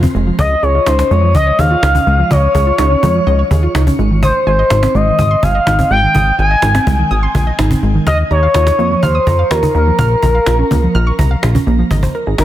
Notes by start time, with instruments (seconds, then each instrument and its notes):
Already playing: analog synth lead C5
0.03 synth arpeggio sound C4, cajon bass
0.15 analog synth bass F1, synth arpeggio sound G#3, cajon slap
0.27 synth arpeggio sound F3
0.39 analog synth bass C#2, synth arpeggio sound D#5, analog synth lead D#5, cajon bass
0.63 analog synth bass C#2, synth arpeggio sound G#4, analog synth lead C#5, cajon slap
0.75 synth arpeggio sound F4
0.86 analog synth bass C#2, synth arpeggio sound D#4, analog synth lead C5, cajon slap
0.99 synth arpeggio sound C#4, cajon slap
1.11 analog synth bass F2, synth arpeggio sound G#3, analog synth lead C#5, cajon slap
1.23 synth arpeggio sound F3
1.35 analog synth bass C#2, synth arpeggio sound D#5, analog synth lead D#5, cajon bass
1.47 synth arpeggio sound C#5
1.59 analog synth bass D#2, synth arpeggio sound G#4, analog synth lead F5, cajon bass
1.71 synth arpeggio sound F4
1.83 analog synth bass C#2, synth arpeggio sound D#4, cajon slap
1.95 synth arpeggio sound C#4, cajon bass
2.07 analog synth bass C#2, synth arpeggio sound G#3, cajon slap
2.19 synth arpeggio sound F3
2.31 analog synth bass C#2, analog synth lead C#5, synth arpeggio sound D#5, cajon bass
2.55 analog synth bass C#2, synth arpeggio sound G#4, cajon bass
2.67 synth arpeggio sound F4
2.78 analog synth bass C#2, synth arpeggio sound D#4, cajon slap
2.91 synth arpeggio sound C#4
3.03 analog synth bass F2, synth arpeggio sound G#3, cajon bass
3.15 synth arpeggio sound F3
3.27 analog synth bass C#2, synth arpeggio sound D#5, cajon slap
3.39 synth arpeggio sound C#5
3.51 analog synth bass D#2, synth arpeggio sound G#4, cajon bass
3.63 synth arpeggio sound F4
3.75 analog synth bass C#2, synth arpeggio sound D#4, cajon slap
3.87 synth arpeggio sound C#4, cajon bass
3.99 analog synth bass G#1, synth arpeggio sound G#3, cajon slap
4.11 synth arpeggio sound D#3
4.23 analog synth lead C5, synth arpeggio sound D#6, cajon bass
4.47 analog synth bass G#1, analog synth lead C5, synth arpeggio sound G#5, cajon slap
4.59 synth arpeggio sound D#5
4.70 analog synth bass G#1, synth arpeggio sound D#4, cajon slap
4.83 synth arpeggio sound C4, cajon slap
4.95 analog synth bass G#1, synth arpeggio sound G#3, analog synth lead D#5, cajon slap
5.07 synth arpeggio sound D#3
5.19 analog synth bass G#1, synth arpeggio sound D#6, cajon bass
5.31 synth arpeggio sound C6
5.43 analog synth bass G1, analog synth lead F5, synth arpeggio sound G#5, cajon bass
5.55 synth arpeggio sound D#5
5.67 analog synth bass G#1, synth arpeggio sound D#4, cajon slap
5.79 synth arpeggio sound C4, cajon bass
5.91 analog synth bass G#1, synth arpeggio sound G#3, analog synth lead G5, cajon slap
6.03 synth arpeggio sound D#3
6.15 analog synth bass G#1, synth arpeggio sound D#6, cajon bass
6.39 analog synth bass G#1, synth arpeggio sound G#5, analog synth lead G#5, cajon slap
6.51 synth arpeggio sound D#5
6.62 analog synth bass G#1, synth arpeggio sound D#4, cajon slap
6.75 synth arpeggio sound C4, cajon slap
6.87 analog synth bass C2, synth arpeggio sound G#3, cajon bass
6.99 synth arpeggio sound D#3
7.11 analog synth bass G#1, synth arpeggio sound D#6, cajon slap
7.23 synth arpeggio sound C6
7.35 analog synth bass A#1, synth arpeggio sound G#5, cajon bass
7.47 synth arpeggio sound D#5
7.59 analog synth bass G#1, synth arpeggio sound D#4, cajon slap
7.71 synth arpeggio sound C4, cajon bass
7.83 analog synth bass G#1, synth arpeggio sound G#3, cajon slap
7.95 synth arpeggio sound D#3
8.07 analog synth bass D#2, analog synth lead D#5, synth arpeggio sound F6, cajon bass
8.31 analog synth bass D#2, analog synth lead C#5, synth arpeggio sound A#5, cajon slap
8.43 synth arpeggio sound F5
8.54 analog synth bass D#2, synth arpeggio sound F4, cajon slap
8.67 synth arpeggio sound D#4, cajon slap
8.79 analog synth bass F2, synth arpeggio sound A#3, cajon slap
8.91 synth arpeggio sound F3
9.03 analog synth bass D#2, analog synth lead C5, synth arpeggio sound F6, cajon bass
9.15 synth arpeggio sound D#6
9.27 analog synth bass F2, synth arpeggio sound A#5, cajon bass
9.39 synth arpeggio sound F5
9.51 analog synth bass D#2, synth arpeggio sound F4, analog synth lead A#4, cajon slap
9.63 synth arpeggio sound D#4, cajon bass
9.75 analog synth bass D#2, synth arpeggio sound A#3, analog synth lead A#4, cajon slap
9.87 synth arpeggio sound F3
9.99 analog synth bass A#1, synth arpeggio sound F6, cajon bass
10.23 analog synth bass A#1, synth arpeggio sound A#5, cajon bass
10.35 synth arpeggio sound F5
10.46 analog synth bass A#1, synth arpeggio sound F4, cajon slap
10.59 synth arpeggio sound C#4
10.71 analog synth bass C#2, synth arpeggio sound A#3, cajon bass
10.83 synth arpeggio sound F3
10.95 analog synth bass A#1, synth arpeggio sound F6, cajon slap
11.07 synth arpeggio sound C#6
11.19 analog synth bass C2, synth arpeggio sound A#5, cajon bass
11.31 synth arpeggio sound F5
11.43 analog synth bass A#1, synth arpeggio sound F4, cajon slap
11.55 synth arpeggio sound C#4, cajon bass
11.67 analog synth bass A#1, synth arpeggio sound A#3, cajon slap
11.79 synth arpeggio sound F3
11.91 analog synth bass G#1, synth arpeggio sound D#5, cajon bass
12.03 synth arpeggio sound C5, cajon bass
12.15 synth arpeggio sound A#4, cajon slap
12.27 analog synth bass G#1, synth arpeggio sound G#4
12.38 analog synth bass G#1, synth arpeggio sound D#4, analog synth lead A#4, cajon slap